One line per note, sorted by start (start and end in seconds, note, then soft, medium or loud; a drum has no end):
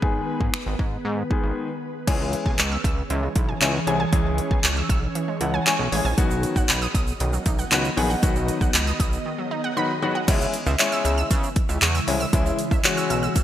0.00 0.21 G#1 loud
0.00 2.04 D#3 medium
0.00 0.51 D#3 medium
0.00 0.51 G#3 medium
0.00 2.04 B3 medium
0.00 0.51 B3 medium
0.00 2.04 G#4 medium
0.00 0.51 G#4 loud
0.00 2.04 B4 medium
0.00 kick loud
0.41 0.50 G#2 medium
0.41 kick medium
0.54 finger snap loud
0.66 0.76 G#1 loud
0.79 0.98 G#2 loud
0.79 kick medium
1.05 1.23 G#2 loud
1.30 1.67 D#3 medium
1.30 1.67 G#3 medium
1.30 1.67 B3 medium
1.30 1.67 G#4 medium
1.30 kick medium
1.43 1.53 G#1 medium
2.07 2.35 C#2 loud
2.07 2.56 E3 medium
2.07 6.14 E3 medium
2.07 2.19 E3 medium
2.07 2.56 G#3 medium
2.07 6.14 C#4 medium
2.07 2.56 C#4 medium
2.07 6.14 G#4 medium
2.07 2.56 G#4 medium
2.07 6.14 C#5 medium
2.07 kick loud
2.07 closed hi-hat medium
2.07 crash medium
2.20 2.32 G#3 medium
2.33 closed hi-hat medium
2.46 2.55 B1 loud
2.46 2.57 G#5 medium
2.46 kick medium
2.59 2.77 C#2 medium
2.59 2.70 C#6 medium
2.59 clap loud
2.59 closed hi-hat medium
2.72 2.83 E6 medium
2.84 3.03 C#2 medium
2.84 2.96 E6 medium
2.84 kick loud
2.84 closed hi-hat medium
3.10 3.29 C#2 loud
3.10 3.21 E3 medium
3.10 closed hi-hat medium
3.23 3.34 G#3 medium
3.36 3.54 B1 medium
3.36 3.47 E4 medium
3.36 kick loud
3.36 closed hi-hat medium
3.49 3.60 G#5 medium
3.61 3.80 C#2 loud
3.61 3.73 E3 medium
3.61 3.73 G#3 medium
3.61 3.74 C#4 medium
3.61 3.74 E4 medium
3.61 3.73 C#6 loud
3.61 clap loud
3.61 closed hi-hat medium
3.87 4.05 C2 medium
3.87 3.99 E3 medium
3.87 3.99 G#3 medium
3.87 3.99 C#4 medium
3.87 3.99 G#4 medium
3.87 3.98 G#5 medium
3.87 closed hi-hat medium
4.00 4.11 G#5 medium
4.12 4.40 C#2 loud
4.12 4.61 E3 medium
4.12 4.24 E3 loud
4.12 4.61 G#3 medium
4.12 4.62 C#4 medium
4.12 4.62 G#4 medium
4.12 kick loud
4.12 closed hi-hat medium
4.26 4.37 G#3 medium
4.38 closed hi-hat medium
4.51 4.60 B1 medium
4.51 4.62 G#5 medium
4.51 kick medium
4.64 4.82 C#2 medium
4.64 4.75 C#6 medium
4.64 clap loud
4.64 closed hi-hat medium
4.77 4.88 E6 medium
4.89 5.08 B1 medium
4.89 5.01 E6 medium
4.89 kick medium
4.89 closed hi-hat medium
5.15 5.26 E3 medium
5.15 closed hi-hat medium
5.28 5.39 G#3 medium
5.41 5.59 C#2 loud
5.41 5.52 E4 medium
5.41 5.65 F#5 medium
5.41 closed hi-hat medium
5.54 5.65 G#5 medium
5.66 5.79 E3 medium
5.66 5.79 G#3 medium
5.66 5.79 C#4 medium
5.66 5.79 G#4 medium
5.66 6.14 G#5 medium
5.66 5.78 C#6 loud
5.66 clap loud
5.66 closed hi-hat medium
5.79 5.88 B1 medium
5.92 6.01 A1 medium
5.92 6.04 E3 medium
5.92 6.04 G#3 medium
5.92 6.04 C#4 medium
5.92 6.04 G#4 medium
5.92 6.03 G#5 medium
5.92 open hi-hat medium
6.05 6.14 A#1 medium
6.05 6.16 G#5 medium
6.18 6.45 B1 loud
6.18 6.67 D#3 medium
6.18 10.24 D#3 medium
6.18 6.29 D#3 medium
6.18 6.67 F#3 medium
6.18 10.24 B3 medium
6.18 6.67 B3 medium
6.18 8.21 F#4 medium
6.18 6.67 F#4 loud
6.18 10.24 D#5 medium
6.18 kick loud
6.18 closed hi-hat medium
6.18 shaker medium
6.31 6.42 F#3 medium
6.31 shaker soft
6.43 closed hi-hat medium
6.43 shaker soft
6.56 6.65 G#1 medium
6.56 6.68 F#5 medium
6.56 kick medium
6.56 shaker soft
6.69 6.87 B1 loud
6.69 6.80 B5 loud
6.69 clap loud
6.69 closed hi-hat medium
6.69 shaker medium
6.82 6.93 D#6 medium
6.82 shaker medium
6.95 7.13 B1 medium
6.95 7.06 D#6 medium
6.95 kick loud
6.95 closed hi-hat medium
6.95 shaker medium
7.07 shaker soft
7.20 7.39 B1 loud
7.20 7.32 D#3 medium
7.20 closed hi-hat medium
7.20 shaker medium
7.33 7.44 F#3 medium
7.33 shaker medium
7.46 7.64 B1 loud
7.46 7.57 D#4 medium
7.46 kick loud
7.46 closed hi-hat medium
7.46 shaker medium
7.59 7.70 F#5 medium
7.59 shaker medium
7.71 7.90 C#2 medium
7.71 7.84 D#3 medium
7.71 7.84 F#3 medium
7.71 7.84 B3 medium
7.71 7.84 F#4 medium
7.71 7.83 B5 loud
7.71 clap loud
7.71 closed hi-hat medium
7.71 shaker medium
7.84 shaker medium
7.97 8.16 A#1 medium
7.97 8.09 D#3 medium
7.97 8.09 F#3 medium
7.97 8.09 B3 medium
7.97 8.10 G#4 loud
7.97 8.09 F#5 medium
7.97 open hi-hat medium
8.10 8.21 F#5 medium
8.10 shaker soft
8.23 8.51 B1 loud
8.23 8.72 D#3 medium
8.23 8.34 D#3 loud
8.23 8.72 F#3 medium
8.23 8.72 B3 medium
8.23 8.72 F#4 medium
8.23 10.26 G#4 medium
8.23 kick loud
8.23 closed hi-hat medium
8.23 shaker medium
8.36 8.47 F#3 medium
8.36 shaker soft
8.48 closed hi-hat medium
8.48 shaker soft
8.61 8.70 B1 medium
8.61 8.73 F#5 medium
8.61 kick medium
8.61 shaker soft
8.74 8.93 C#2 medium
8.74 8.85 B5 loud
8.74 clap loud
8.74 closed hi-hat medium
8.74 shaker medium
8.87 8.98 D#6 medium
8.87 shaker medium
9.00 9.18 B1 medium
9.00 9.11 D#6 medium
9.00 kick loud
9.00 closed hi-hat medium
9.00 shaker medium
9.13 shaker soft
9.26 9.37 D#3 medium
9.38 9.50 F#3 medium
9.51 9.62 D#4 medium
9.64 9.75 F#5 medium
9.77 9.89 D#3 medium
9.77 9.89 F#3 medium
9.77 9.89 B3 medium
9.77 9.89 F#4 medium
9.77 9.88 B5 loud
10.02 10.15 D#3 medium
10.02 10.15 F#3 medium
10.02 10.15 B3 medium
10.02 10.15 F#4 loud
10.02 10.14 F#5 medium
10.15 10.26 F#5 medium
10.28 10.46 C#2 loud
10.28 13.44 C#3 medium
10.28 10.39 E3 loud
10.28 13.44 E3 medium
10.28 10.52 G#3 medium
10.28 13.44 G#3 medium
10.28 10.53 C#4 medium
10.28 12.31 E4 medium
10.28 10.53 E4 medium
10.28 kick loud
10.28 closed hi-hat medium
10.28 crash loud
10.28 shaker medium
10.41 10.52 E3 medium
10.41 shaker soft
10.54 closed hi-hat medium
10.54 shaker soft
10.66 10.76 C#2 loud
10.66 10.78 E5 medium
10.66 shaker soft
10.79 11.28 G#3 medium
10.79 11.28 C#4 medium
10.79 11.28 E4 medium
10.79 10.91 C#6 loud
10.79 clap loud
10.79 closed hi-hat medium
10.79 shaker medium
10.92 11.03 E6 loud
10.92 shaker medium
11.05 11.23 C#2 loud
11.05 11.16 E6 loud
11.05 closed hi-hat medium
11.05 shaker medium
11.18 11.29 E6 medium
11.18 shaker soft
11.30 11.49 C#3 loud
11.30 11.42 E3 medium
11.30 kick loud
11.30 closed hi-hat medium
11.30 shaker medium
11.43 11.55 E3 medium
11.43 shaker medium
11.56 kick loud
11.56 closed hi-hat medium
11.69 11.78 C#2 medium
11.69 11.80 E5 medium
11.69 shaker medium
11.82 12.00 E2 loud
11.82 11.93 C#6 loud
11.82 clap loud
11.82 closed hi-hat loud
11.82 shaker medium
11.95 12.06 E6 medium
11.95 shaker medium
12.07 12.26 C2 medium
12.07 12.20 G#3 medium
12.07 12.20 C#4 medium
12.07 12.20 E4 medium
12.07 open hi-hat medium
12.07 shaker soft
12.20 12.31 E6 loud
12.20 shaker soft
12.33 12.52 C#2 loud
12.33 12.44 E3 loud
12.33 12.57 G#3 medium
12.33 12.58 C#4 medium
12.33 12.58 E4 loud
12.33 13.44 F#4 medium
12.33 kick loud
12.33 closed hi-hat medium
12.33 shaker medium
12.46 12.57 E3 medium
12.46 shaker soft
12.59 closed hi-hat medium
12.59 shaker soft
12.71 12.81 C#2 medium
12.71 12.83 E5 medium
12.71 kick medium
12.71 shaker soft
12.84 13.33 G#3 medium
12.84 13.33 C#4 medium
12.84 13.33 F#4 medium
12.84 12.96 C#6 medium
12.84 clap loud
12.84 closed hi-hat medium
12.84 shaker medium
12.97 13.08 E6 loud
12.97 shaker medium
13.10 13.29 B1 medium
13.10 13.21 E6 medium
13.10 closed hi-hat medium
13.10 shaker medium
13.23 13.34 E6 medium
13.23 shaker soft
13.36 13.44 E3 medium
13.36 kick loud
13.36 closed hi-hat medium
13.36 shaker medium